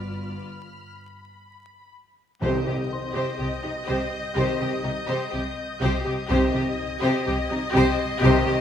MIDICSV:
0, 0, Header, 1, 11, 480
1, 0, Start_track
1, 0, Key_signature, -3, "minor"
1, 0, Tempo, 981997
1, 1186, Time_signature, 4, 2, 24, 8
1, 1660, Tempo, 961538
1, 4262, End_track
2, 0, Start_track
2, 0, Title_t, "Violin section"
2, 0, Program_c, 0, 48
2, 0, Note_on_c, 0, 83, 42
2, 0, Note_on_c, 0, 89, 45
2, 443, Note_off_c, 0, 89, 0
2, 929, Note_off_c, 0, 83, 0
2, 1192, Note_on_c, 0, 91, 42
2, 1197, Note_on_c, 0, 87, 44
2, 3513, Note_off_c, 0, 91, 0
2, 3513, Note_on_c, 0, 92, 42
2, 4262, Note_off_c, 0, 87, 0
2, 4262, Note_off_c, 0, 92, 0
2, 4262, End_track
3, 0, Start_track
3, 0, Title_t, "Celesta"
3, 0, Program_c, 1, 8
3, 0, Control_c, 1, 64, 127
3, 1195, Control_c, 1, 64, 0
3, 1291, Control_c, 1, 64, 127
3, 1431, Note_on_c, 1, 84, 37
3, 1435, Note_on_c, 1, 72, 34
3, 2851, Note_off_c, 1, 84, 0
3, 2853, Note_off_c, 1, 72, 0
3, 4262, End_track
4, 0, Start_track
4, 0, Title_t, "Violin section"
4, 0, Program_c, 2, 48
4, 0, Note_on_c, 2, 74, 28
4, 202, Note_off_c, 2, 74, 0
4, 1184, Note_on_c, 2, 75, 59
4, 3088, Note_off_c, 2, 75, 0
4, 3113, Note_on_c, 2, 75, 80
4, 4262, Note_off_c, 2, 75, 0
4, 4262, End_track
5, 0, Start_track
5, 0, Title_t, "Violin section"
5, 0, Program_c, 3, 48
5, 0, Note_on_c, 3, 71, 30
5, 205, Note_off_c, 3, 71, 0
5, 1185, Note_on_c, 3, 72, 59
5, 1296, Note_off_c, 3, 72, 0
5, 1304, Note_on_c, 3, 67, 47
5, 1343, Note_off_c, 3, 67, 0
5, 1538, Note_on_c, 3, 72, 57
5, 1651, Note_off_c, 3, 72, 0
5, 1657, Note_on_c, 3, 67, 44
5, 1697, Note_off_c, 3, 67, 0
5, 1771, Note_on_c, 3, 63, 49
5, 1811, Note_off_c, 3, 63, 0
5, 1896, Note_on_c, 3, 72, 67
5, 2011, Note_off_c, 3, 72, 0
5, 2140, Note_on_c, 3, 72, 74
5, 2253, Note_off_c, 3, 72, 0
5, 2265, Note_on_c, 3, 67, 46
5, 2305, Note_off_c, 3, 67, 0
5, 2378, Note_on_c, 3, 63, 53
5, 2418, Note_off_c, 3, 63, 0
5, 2498, Note_on_c, 3, 72, 69
5, 2613, Note_off_c, 3, 72, 0
5, 2620, Note_on_c, 3, 67, 56
5, 2660, Note_off_c, 3, 67, 0
5, 2867, Note_on_c, 3, 72, 77
5, 2980, Note_off_c, 3, 72, 0
5, 2989, Note_on_c, 3, 67, 60
5, 3029, Note_off_c, 3, 67, 0
5, 3105, Note_on_c, 3, 72, 76
5, 3218, Note_off_c, 3, 72, 0
5, 3234, Note_on_c, 3, 67, 60
5, 3274, Note_off_c, 3, 67, 0
5, 3471, Note_on_c, 3, 72, 80
5, 3581, Note_off_c, 3, 72, 0
5, 3596, Note_on_c, 3, 67, 59
5, 3636, Note_off_c, 3, 67, 0
5, 3713, Note_on_c, 3, 63, 61
5, 3753, Note_off_c, 3, 63, 0
5, 3839, Note_on_c, 3, 72, 96
5, 3944, Note_off_c, 3, 72, 0
5, 4077, Note_on_c, 3, 72, 86
5, 4181, Note_off_c, 3, 72, 0
5, 4190, Note_on_c, 3, 67, 75
5, 4230, Note_off_c, 3, 67, 0
5, 4262, End_track
6, 0, Start_track
6, 0, Title_t, "Viola section"
6, 0, Program_c, 4, 48
6, 0, Note_on_c, 4, 65, 30
6, 202, Note_off_c, 4, 65, 0
6, 1182, Note_on_c, 4, 67, 58
6, 1294, Note_off_c, 4, 67, 0
6, 1300, Note_on_c, 4, 67, 48
6, 1339, Note_off_c, 4, 67, 0
6, 1533, Note_on_c, 4, 67, 58
6, 1648, Note_off_c, 4, 67, 0
6, 1655, Note_on_c, 4, 67, 45
6, 1695, Note_off_c, 4, 67, 0
6, 1773, Note_on_c, 4, 67, 46
6, 1813, Note_off_c, 4, 67, 0
6, 1894, Note_on_c, 4, 67, 64
6, 2010, Note_off_c, 4, 67, 0
6, 2134, Note_on_c, 4, 67, 71
6, 2246, Note_off_c, 4, 67, 0
6, 2252, Note_on_c, 4, 67, 53
6, 2292, Note_off_c, 4, 67, 0
6, 2374, Note_on_c, 4, 67, 54
6, 2414, Note_off_c, 4, 67, 0
6, 2499, Note_on_c, 4, 67, 66
6, 2608, Note_off_c, 4, 67, 0
6, 2614, Note_on_c, 4, 67, 58
6, 2654, Note_off_c, 4, 67, 0
6, 2863, Note_on_c, 4, 67, 81
6, 2975, Note_off_c, 4, 67, 0
6, 2981, Note_on_c, 4, 67, 69
6, 3021, Note_off_c, 4, 67, 0
6, 3107, Note_on_c, 4, 67, 76
6, 3218, Note_off_c, 4, 67, 0
6, 3224, Note_on_c, 4, 67, 61
6, 3264, Note_off_c, 4, 67, 0
6, 3468, Note_on_c, 4, 67, 84
6, 3579, Note_off_c, 4, 67, 0
6, 3587, Note_on_c, 4, 67, 66
6, 3627, Note_off_c, 4, 67, 0
6, 3709, Note_on_c, 4, 67, 57
6, 3749, Note_off_c, 4, 67, 0
6, 3819, Note_on_c, 4, 67, 87
6, 3933, Note_off_c, 4, 67, 0
6, 4064, Note_on_c, 4, 67, 92
6, 4175, Note_off_c, 4, 67, 0
6, 4183, Note_on_c, 4, 67, 63
6, 4223, Note_off_c, 4, 67, 0
6, 4262, End_track
7, 0, Start_track
7, 0, Title_t, "French horn section"
7, 0, Program_c, 5, 60
7, 0, Note_on_c, 5, 59, 30
7, 0, Note_on_c, 5, 65, 30
7, 206, Note_off_c, 5, 65, 0
7, 207, Note_off_c, 5, 59, 0
7, 1187, Note_on_c, 5, 60, 51
7, 1187, Note_on_c, 5, 67, 49
7, 1369, Note_off_c, 5, 60, 0
7, 1369, Note_off_c, 5, 67, 0
7, 2140, Note_on_c, 5, 67, 56
7, 2142, Note_on_c, 5, 60, 63
7, 2325, Note_off_c, 5, 60, 0
7, 2325, Note_off_c, 5, 67, 0
7, 3110, Note_on_c, 5, 60, 68
7, 3111, Note_on_c, 5, 67, 61
7, 3292, Note_off_c, 5, 60, 0
7, 3293, Note_off_c, 5, 67, 0
7, 4066, Note_on_c, 5, 60, 85
7, 4069, Note_on_c, 5, 67, 83
7, 4247, Note_off_c, 5, 60, 0
7, 4249, Note_off_c, 5, 67, 0
7, 4262, End_track
8, 0, Start_track
8, 0, Title_t, "Trombone section"
8, 0, Program_c, 6, 61
8, 1187, Note_on_c, 6, 48, 52
8, 1187, Note_on_c, 6, 51, 53
8, 1368, Note_off_c, 6, 51, 0
8, 1369, Note_off_c, 6, 48, 0
8, 2148, Note_on_c, 6, 48, 60
8, 2149, Note_on_c, 6, 51, 60
8, 2329, Note_off_c, 6, 48, 0
8, 2329, Note_off_c, 6, 51, 0
8, 3115, Note_on_c, 6, 48, 68
8, 3117, Note_on_c, 6, 51, 67
8, 3295, Note_off_c, 6, 48, 0
8, 3297, Note_off_c, 6, 51, 0
8, 4072, Note_on_c, 6, 48, 83
8, 4072, Note_on_c, 6, 51, 82
8, 4250, Note_off_c, 6, 48, 0
8, 4250, Note_off_c, 6, 51, 0
8, 4262, End_track
9, 0, Start_track
9, 0, Title_t, "Cello section"
9, 0, Program_c, 7, 48
9, 0, Note_on_c, 7, 43, 34
9, 202, Note_off_c, 7, 43, 0
9, 1180, Note_on_c, 7, 48, 63
9, 1220, Note_off_c, 7, 48, 0
9, 1302, Note_on_c, 7, 48, 46
9, 1341, Note_off_c, 7, 48, 0
9, 1541, Note_on_c, 7, 48, 64
9, 1580, Note_off_c, 7, 48, 0
9, 1660, Note_on_c, 7, 48, 51
9, 1700, Note_off_c, 7, 48, 0
9, 1779, Note_on_c, 7, 48, 47
9, 1819, Note_off_c, 7, 48, 0
9, 1899, Note_on_c, 7, 48, 73
9, 1939, Note_off_c, 7, 48, 0
9, 2140, Note_on_c, 7, 48, 66
9, 2180, Note_off_c, 7, 48, 0
9, 2261, Note_on_c, 7, 48, 51
9, 2301, Note_off_c, 7, 48, 0
9, 2382, Note_on_c, 7, 48, 52
9, 2422, Note_off_c, 7, 48, 0
9, 2500, Note_on_c, 7, 48, 71
9, 2540, Note_off_c, 7, 48, 0
9, 2627, Note_on_c, 7, 48, 54
9, 2667, Note_off_c, 7, 48, 0
9, 2864, Note_on_c, 7, 48, 83
9, 2904, Note_off_c, 7, 48, 0
9, 2990, Note_on_c, 7, 48, 57
9, 3030, Note_off_c, 7, 48, 0
9, 3110, Note_on_c, 7, 48, 82
9, 3150, Note_off_c, 7, 48, 0
9, 3231, Note_on_c, 7, 48, 65
9, 3271, Note_off_c, 7, 48, 0
9, 3473, Note_on_c, 7, 48, 88
9, 3513, Note_off_c, 7, 48, 0
9, 3590, Note_on_c, 7, 48, 61
9, 3630, Note_off_c, 7, 48, 0
9, 3709, Note_on_c, 7, 48, 61
9, 3749, Note_off_c, 7, 48, 0
9, 3826, Note_on_c, 7, 48, 92
9, 3866, Note_off_c, 7, 48, 0
9, 4065, Note_on_c, 7, 48, 90
9, 4105, Note_off_c, 7, 48, 0
9, 4184, Note_on_c, 7, 48, 66
9, 4224, Note_off_c, 7, 48, 0
9, 4262, End_track
10, 0, Start_track
10, 0, Title_t, "Timpani"
10, 0, Program_c, 8, 47
10, 1182, Note_on_c, 8, 48, 81
10, 1881, Note_off_c, 8, 48, 0
10, 4262, End_track
11, 0, Start_track
11, 0, Title_t, "Double bass section"
11, 0, Program_c, 10, 48
11, 0, Note_on_c, 10, 31, 32
11, 201, Note_off_c, 10, 31, 0
11, 1186, Note_on_c, 10, 36, 63
11, 1225, Note_off_c, 10, 36, 0
11, 1665, Note_on_c, 10, 36, 48
11, 1704, Note_off_c, 10, 36, 0
11, 1907, Note_on_c, 10, 36, 61
11, 1947, Note_off_c, 10, 36, 0
11, 2145, Note_on_c, 10, 36, 73
11, 2185, Note_off_c, 10, 36, 0
11, 2384, Note_on_c, 10, 36, 51
11, 2424, Note_off_c, 10, 36, 0
11, 2627, Note_on_c, 10, 36, 55
11, 2667, Note_off_c, 10, 36, 0
11, 2872, Note_on_c, 10, 36, 79
11, 2912, Note_off_c, 10, 36, 0
11, 3111, Note_on_c, 10, 36, 82
11, 3151, Note_off_c, 10, 36, 0
11, 3596, Note_on_c, 10, 36, 62
11, 3636, Note_off_c, 10, 36, 0
11, 3835, Note_on_c, 10, 36, 92
11, 3875, Note_off_c, 10, 36, 0
11, 4070, Note_on_c, 10, 36, 93
11, 4110, Note_off_c, 10, 36, 0
11, 4262, End_track
0, 0, End_of_file